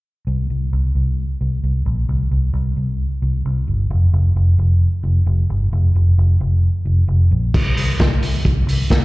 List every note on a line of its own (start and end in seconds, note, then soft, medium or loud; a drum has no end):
0.27 0.45 C2 medium
0.50 0.68 C2 medium
0.73 0.91 C2 medium
0.95 1.23 C2 medium
1.41 1.59 C2 medium
1.64 1.82 C2 medium
1.86 2.04 A#1 medium
2.09 2.27 C2 medium
2.31 2.50 C2 medium
2.53 2.72 C2 medium
2.77 3.05 C2 medium
3.22 3.41 C2 medium
3.45 3.64 C2 medium
3.68 3.86 G1 medium
3.90 4.09 F1 medium
4.13 4.32 F1 medium
4.36 4.55 F1 medium
4.58 4.86 F1 medium
5.03 5.22 F1 medium
5.26 5.45 F1 medium
5.50 5.68 G1 medium
5.73 5.91 F1 medium
5.95 6.14 F1 medium
6.18 6.37 F1 medium
6.40 6.68 F1 medium
6.85 7.04 F1 medium
7.08 7.27 F1 medium
7.31 7.50 A#1 medium
7.54 7.73 C2 medium
7.54 kick loud
7.54 crash medium
7.76 7.95 C2 medium
7.76 open hi-hat medium
8.00 8.18 C2 medium
8.00 kick loud
8.00 snare loud
8.00 closed hi-hat medium
8.21 8.40 C2 medium
8.21 open hi-hat medium
8.45 8.64 C2 medium
8.45 kick medium
8.45 closed hi-hat medium
8.67 8.86 C2 medium
8.67 open hi-hat medium
8.90 9.05 C2 medium
8.90 kick loud
8.90 snare loud
8.90 closed hi-hat medium